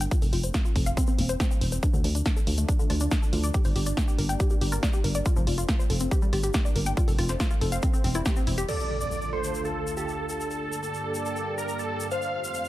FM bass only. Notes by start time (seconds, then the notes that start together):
0.22 F1
0.33 F1
0.76 F1
1.19 E1
1.61 E1
1.94 D2
2.04 D2
2.47 D2
2.90 D2
3.33 D2
3.65 G1
3.76 G1
4.19 G1
4.61 G1
5.04 G1
5.36 F1
5.47 F1
5.90 F1
6.33 G1
6.76 G1
7.08 F1
7.18 F1
7.61 F1
8.04 E1
8.47 E1